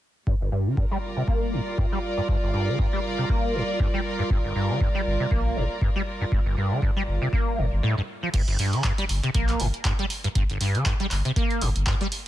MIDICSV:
0, 0, Header, 1, 5, 480
1, 0, Start_track
1, 0, Key_signature, -2, "minor"
1, 0, Tempo, 504202
1, 256, Time_signature, 4, 2, 24, 8
1, 11689, End_track
2, 0, Start_track
2, 0, Title_t, "String section"
2, 0, Program_c, 0, 48
2, 254, Note_on_c, 0, 55, 68
2, 687, Note_on_c, 0, 65, 83
2, 706, Note_on_c, 0, 70, 69
2, 856, Note_on_c, 0, 74, 87
2, 7455, Note_off_c, 0, 55, 0
2, 7455, Note_off_c, 0, 70, 0
2, 7455, Note_off_c, 0, 74, 0
2, 7456, Note_off_c, 0, 65, 0
2, 11689, End_track
3, 0, Start_track
3, 0, Title_t, "Acid bass"
3, 0, Program_c, 1, 38
3, 256, Note_on_c, 1, 43, 78
3, 330, Note_off_c, 1, 43, 0
3, 390, Note_on_c, 1, 31, 73
3, 477, Note_off_c, 1, 31, 0
3, 496, Note_on_c, 1, 43, 74
3, 631, Note_on_c, 1, 50, 99
3, 645, Note_off_c, 1, 43, 0
3, 718, Note_off_c, 1, 50, 0
3, 736, Note_on_c, 1, 43, 79
3, 810, Note_off_c, 1, 43, 0
3, 870, Note_on_c, 1, 55, 96
3, 929, Note_off_c, 1, 55, 0
3, 1110, Note_on_c, 1, 48, 73
3, 1168, Note_off_c, 1, 48, 0
3, 1216, Note_on_c, 1, 58, 80
3, 1455, Note_on_c, 1, 43, 99
3, 1469, Note_off_c, 1, 58, 0
3, 1530, Note_off_c, 1, 43, 0
3, 1695, Note_on_c, 1, 43, 79
3, 1770, Note_off_c, 1, 43, 0
3, 1830, Note_on_c, 1, 55, 98
3, 1888, Note_off_c, 1, 55, 0
3, 2071, Note_on_c, 1, 43, 75
3, 2106, Note_off_c, 1, 43, 0
3, 2176, Note_on_c, 1, 43, 79
3, 2250, Note_off_c, 1, 43, 0
3, 2311, Note_on_c, 1, 31, 73
3, 2398, Note_off_c, 1, 31, 0
3, 2415, Note_on_c, 1, 43, 72
3, 2550, Note_on_c, 1, 50, 97
3, 2565, Note_off_c, 1, 43, 0
3, 2637, Note_off_c, 1, 50, 0
3, 2655, Note_on_c, 1, 43, 78
3, 2730, Note_off_c, 1, 43, 0
3, 2790, Note_on_c, 1, 55, 94
3, 2848, Note_off_c, 1, 55, 0
3, 3030, Note_on_c, 1, 48, 73
3, 3089, Note_off_c, 1, 48, 0
3, 3135, Note_on_c, 1, 58, 81
3, 3375, Note_on_c, 1, 43, 100
3, 3390, Note_off_c, 1, 58, 0
3, 3450, Note_off_c, 1, 43, 0
3, 3615, Note_on_c, 1, 43, 80
3, 3690, Note_off_c, 1, 43, 0
3, 3750, Note_on_c, 1, 55, 96
3, 3808, Note_off_c, 1, 55, 0
3, 3990, Note_on_c, 1, 43, 75
3, 4025, Note_off_c, 1, 43, 0
3, 4095, Note_on_c, 1, 43, 80
3, 4170, Note_off_c, 1, 43, 0
3, 4230, Note_on_c, 1, 31, 75
3, 4317, Note_off_c, 1, 31, 0
3, 4335, Note_on_c, 1, 43, 73
3, 4469, Note_on_c, 1, 50, 100
3, 4483, Note_off_c, 1, 43, 0
3, 4557, Note_off_c, 1, 50, 0
3, 4574, Note_on_c, 1, 43, 79
3, 4649, Note_off_c, 1, 43, 0
3, 4709, Note_on_c, 1, 55, 98
3, 4768, Note_off_c, 1, 55, 0
3, 4950, Note_on_c, 1, 48, 74
3, 5008, Note_off_c, 1, 48, 0
3, 5055, Note_on_c, 1, 58, 79
3, 5295, Note_on_c, 1, 43, 99
3, 5309, Note_off_c, 1, 58, 0
3, 5370, Note_off_c, 1, 43, 0
3, 5536, Note_on_c, 1, 43, 80
3, 5610, Note_off_c, 1, 43, 0
3, 5670, Note_on_c, 1, 55, 99
3, 5728, Note_off_c, 1, 55, 0
3, 5911, Note_on_c, 1, 43, 75
3, 5946, Note_off_c, 1, 43, 0
3, 6015, Note_on_c, 1, 43, 82
3, 6090, Note_off_c, 1, 43, 0
3, 6150, Note_on_c, 1, 31, 74
3, 6237, Note_off_c, 1, 31, 0
3, 6255, Note_on_c, 1, 43, 75
3, 6390, Note_on_c, 1, 50, 100
3, 6404, Note_off_c, 1, 43, 0
3, 6477, Note_off_c, 1, 50, 0
3, 6495, Note_on_c, 1, 43, 78
3, 6570, Note_off_c, 1, 43, 0
3, 6630, Note_on_c, 1, 55, 97
3, 6688, Note_off_c, 1, 55, 0
3, 6871, Note_on_c, 1, 48, 73
3, 6929, Note_off_c, 1, 48, 0
3, 6976, Note_on_c, 1, 58, 79
3, 7217, Note_on_c, 1, 43, 74
3, 7231, Note_off_c, 1, 58, 0
3, 7291, Note_off_c, 1, 43, 0
3, 7457, Note_on_c, 1, 45, 98
3, 7568, Note_off_c, 1, 45, 0
3, 7592, Note_on_c, 1, 43, 76
3, 7626, Note_off_c, 1, 43, 0
3, 7832, Note_on_c, 1, 53, 78
3, 7889, Note_off_c, 1, 53, 0
3, 7936, Note_on_c, 1, 43, 82
3, 8010, Note_off_c, 1, 43, 0
3, 8071, Note_on_c, 1, 31, 75
3, 8158, Note_off_c, 1, 31, 0
3, 8176, Note_on_c, 1, 43, 74
3, 8311, Note_on_c, 1, 50, 102
3, 8325, Note_off_c, 1, 43, 0
3, 8398, Note_off_c, 1, 50, 0
3, 8416, Note_on_c, 1, 43, 81
3, 8491, Note_off_c, 1, 43, 0
3, 8551, Note_on_c, 1, 55, 96
3, 8609, Note_off_c, 1, 55, 0
3, 8791, Note_on_c, 1, 48, 76
3, 8849, Note_off_c, 1, 48, 0
3, 8897, Note_on_c, 1, 58, 81
3, 9136, Note_on_c, 1, 43, 101
3, 9151, Note_off_c, 1, 58, 0
3, 9211, Note_off_c, 1, 43, 0
3, 9376, Note_on_c, 1, 43, 80
3, 9450, Note_off_c, 1, 43, 0
3, 9511, Note_on_c, 1, 55, 99
3, 9569, Note_off_c, 1, 55, 0
3, 9752, Note_on_c, 1, 43, 77
3, 9786, Note_off_c, 1, 43, 0
3, 9856, Note_on_c, 1, 43, 82
3, 9931, Note_off_c, 1, 43, 0
3, 9991, Note_on_c, 1, 31, 74
3, 10078, Note_off_c, 1, 31, 0
3, 10096, Note_on_c, 1, 43, 74
3, 10232, Note_on_c, 1, 50, 101
3, 10246, Note_off_c, 1, 43, 0
3, 10318, Note_off_c, 1, 50, 0
3, 10337, Note_on_c, 1, 43, 82
3, 10411, Note_off_c, 1, 43, 0
3, 10472, Note_on_c, 1, 55, 99
3, 10529, Note_off_c, 1, 55, 0
3, 10712, Note_on_c, 1, 48, 73
3, 10769, Note_off_c, 1, 48, 0
3, 10817, Note_on_c, 1, 58, 82
3, 11057, Note_on_c, 1, 43, 104
3, 11071, Note_off_c, 1, 58, 0
3, 11131, Note_off_c, 1, 43, 0
3, 11297, Note_on_c, 1, 43, 83
3, 11371, Note_off_c, 1, 43, 0
3, 11433, Note_on_c, 1, 55, 99
3, 11490, Note_off_c, 1, 55, 0
3, 11689, End_track
4, 0, Start_track
4, 0, Title_t, "Analog synth bass"
4, 0, Program_c, 2, 38
4, 4097, Note_on_c, 2, 31, 96
4, 4201, Note_off_c, 2, 31, 0
4, 4817, Note_on_c, 2, 31, 87
4, 4921, Note_off_c, 2, 31, 0
4, 5056, Note_on_c, 2, 34, 86
4, 5248, Note_off_c, 2, 34, 0
4, 5297, Note_on_c, 2, 31, 81
4, 5401, Note_off_c, 2, 31, 0
4, 6016, Note_on_c, 2, 31, 98
4, 6120, Note_off_c, 2, 31, 0
4, 6737, Note_on_c, 2, 31, 89
4, 6841, Note_off_c, 2, 31, 0
4, 7217, Note_on_c, 2, 31, 97
4, 7321, Note_off_c, 2, 31, 0
4, 7352, Note_on_c, 2, 31, 89
4, 7432, Note_off_c, 2, 31, 0
4, 7937, Note_on_c, 2, 31, 97
4, 8041, Note_off_c, 2, 31, 0
4, 8657, Note_on_c, 2, 31, 89
4, 8761, Note_off_c, 2, 31, 0
4, 8897, Note_on_c, 2, 34, 85
4, 9089, Note_off_c, 2, 34, 0
4, 9137, Note_on_c, 2, 31, 82
4, 9241, Note_off_c, 2, 31, 0
4, 9857, Note_on_c, 2, 31, 96
4, 9961, Note_off_c, 2, 31, 0
4, 10576, Note_on_c, 2, 31, 86
4, 10681, Note_off_c, 2, 31, 0
4, 11057, Note_on_c, 2, 31, 97
4, 11161, Note_off_c, 2, 31, 0
4, 11192, Note_on_c, 2, 31, 88
4, 11273, Note_off_c, 2, 31, 0
4, 11689, End_track
5, 0, Start_track
5, 0, Title_t, "Drums"
5, 256, Note_on_c, 9, 36, 109
5, 351, Note_off_c, 9, 36, 0
5, 736, Note_on_c, 9, 36, 110
5, 831, Note_off_c, 9, 36, 0
5, 1216, Note_on_c, 9, 36, 109
5, 1311, Note_off_c, 9, 36, 0
5, 1696, Note_on_c, 9, 36, 107
5, 1791, Note_off_c, 9, 36, 0
5, 2176, Note_on_c, 9, 36, 115
5, 2271, Note_off_c, 9, 36, 0
5, 2656, Note_on_c, 9, 36, 116
5, 2751, Note_off_c, 9, 36, 0
5, 3136, Note_on_c, 9, 36, 118
5, 3231, Note_off_c, 9, 36, 0
5, 3616, Note_on_c, 9, 36, 114
5, 3711, Note_off_c, 9, 36, 0
5, 4096, Note_on_c, 9, 36, 118
5, 4191, Note_off_c, 9, 36, 0
5, 4576, Note_on_c, 9, 36, 119
5, 4671, Note_off_c, 9, 36, 0
5, 5056, Note_on_c, 9, 36, 122
5, 5151, Note_off_c, 9, 36, 0
5, 5536, Note_on_c, 9, 36, 118
5, 5631, Note_off_c, 9, 36, 0
5, 6016, Note_on_c, 9, 36, 116
5, 6111, Note_off_c, 9, 36, 0
5, 6496, Note_on_c, 9, 36, 121
5, 6592, Note_off_c, 9, 36, 0
5, 6976, Note_on_c, 9, 36, 118
5, 7072, Note_off_c, 9, 36, 0
5, 7936, Note_on_c, 9, 42, 92
5, 7936, Note_on_c, 9, 49, 94
5, 7937, Note_on_c, 9, 36, 115
5, 8032, Note_off_c, 9, 36, 0
5, 8032, Note_off_c, 9, 42, 0
5, 8032, Note_off_c, 9, 49, 0
5, 8071, Note_on_c, 9, 42, 41
5, 8166, Note_off_c, 9, 42, 0
5, 8176, Note_on_c, 9, 46, 100
5, 8271, Note_off_c, 9, 46, 0
5, 8312, Note_on_c, 9, 42, 40
5, 8407, Note_off_c, 9, 42, 0
5, 8416, Note_on_c, 9, 42, 90
5, 8417, Note_on_c, 9, 36, 115
5, 8418, Note_on_c, 9, 39, 120
5, 8512, Note_off_c, 9, 36, 0
5, 8512, Note_off_c, 9, 42, 0
5, 8513, Note_off_c, 9, 39, 0
5, 8552, Note_on_c, 9, 42, 40
5, 8647, Note_off_c, 9, 42, 0
5, 8656, Note_on_c, 9, 46, 104
5, 8751, Note_off_c, 9, 46, 0
5, 8791, Note_on_c, 9, 42, 40
5, 8887, Note_off_c, 9, 42, 0
5, 8896, Note_on_c, 9, 42, 94
5, 8897, Note_on_c, 9, 36, 116
5, 8991, Note_off_c, 9, 42, 0
5, 8992, Note_off_c, 9, 36, 0
5, 9031, Note_on_c, 9, 42, 41
5, 9032, Note_on_c, 9, 39, 37
5, 9126, Note_off_c, 9, 42, 0
5, 9127, Note_off_c, 9, 39, 0
5, 9136, Note_on_c, 9, 46, 99
5, 9231, Note_off_c, 9, 46, 0
5, 9271, Note_on_c, 9, 42, 40
5, 9367, Note_off_c, 9, 42, 0
5, 9376, Note_on_c, 9, 42, 94
5, 9377, Note_on_c, 9, 36, 110
5, 9377, Note_on_c, 9, 39, 123
5, 9471, Note_off_c, 9, 42, 0
5, 9472, Note_off_c, 9, 36, 0
5, 9473, Note_off_c, 9, 39, 0
5, 9511, Note_on_c, 9, 42, 39
5, 9606, Note_off_c, 9, 42, 0
5, 9616, Note_on_c, 9, 46, 101
5, 9711, Note_off_c, 9, 46, 0
5, 9752, Note_on_c, 9, 42, 39
5, 9847, Note_off_c, 9, 42, 0
5, 9857, Note_on_c, 9, 36, 120
5, 9857, Note_on_c, 9, 42, 93
5, 9952, Note_off_c, 9, 36, 0
5, 9952, Note_off_c, 9, 42, 0
5, 9992, Note_on_c, 9, 42, 39
5, 10087, Note_off_c, 9, 42, 0
5, 10097, Note_on_c, 9, 46, 104
5, 10192, Note_off_c, 9, 46, 0
5, 10232, Note_on_c, 9, 42, 38
5, 10327, Note_off_c, 9, 42, 0
5, 10337, Note_on_c, 9, 36, 119
5, 10337, Note_on_c, 9, 42, 90
5, 10338, Note_on_c, 9, 39, 120
5, 10432, Note_off_c, 9, 36, 0
5, 10432, Note_off_c, 9, 42, 0
5, 10433, Note_off_c, 9, 39, 0
5, 10472, Note_on_c, 9, 42, 39
5, 10567, Note_off_c, 9, 42, 0
5, 10577, Note_on_c, 9, 46, 108
5, 10579, Note_on_c, 9, 39, 38
5, 10672, Note_off_c, 9, 46, 0
5, 10674, Note_off_c, 9, 39, 0
5, 10712, Note_on_c, 9, 42, 39
5, 10807, Note_off_c, 9, 42, 0
5, 10817, Note_on_c, 9, 36, 122
5, 10817, Note_on_c, 9, 42, 90
5, 10912, Note_off_c, 9, 36, 0
5, 10912, Note_off_c, 9, 42, 0
5, 10953, Note_on_c, 9, 42, 38
5, 11048, Note_off_c, 9, 42, 0
5, 11057, Note_on_c, 9, 46, 104
5, 11152, Note_off_c, 9, 46, 0
5, 11192, Note_on_c, 9, 42, 39
5, 11287, Note_off_c, 9, 42, 0
5, 11297, Note_on_c, 9, 36, 121
5, 11297, Note_on_c, 9, 46, 62
5, 11298, Note_on_c, 9, 39, 123
5, 11392, Note_off_c, 9, 36, 0
5, 11392, Note_off_c, 9, 46, 0
5, 11393, Note_off_c, 9, 39, 0
5, 11432, Note_on_c, 9, 42, 38
5, 11527, Note_off_c, 9, 42, 0
5, 11537, Note_on_c, 9, 46, 106
5, 11632, Note_off_c, 9, 46, 0
5, 11689, End_track
0, 0, End_of_file